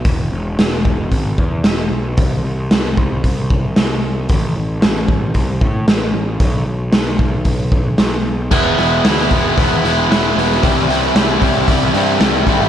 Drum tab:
CC |----------------|----------------|----------------|----------------|
HH |o---o---o---o---|o---o---o---o---|o---o---o---o---|o---o---o---o---|
SD |----o-------o---|----o-------o---|----o-------o---|----o-------o---|
BD |o-----o-o-o-----|o-----o-o-o-----|o-----o-o-o-----|o-----o-o-o-----|

CC |x---------------|----------------|
HH |--o-o-o-o-o-o-o-|o-o-o-o-o-o-o-o-|
SD |----o-------o--o|----o-------o--o|
BD |o-----o-o-------|o-----o-o-----o-|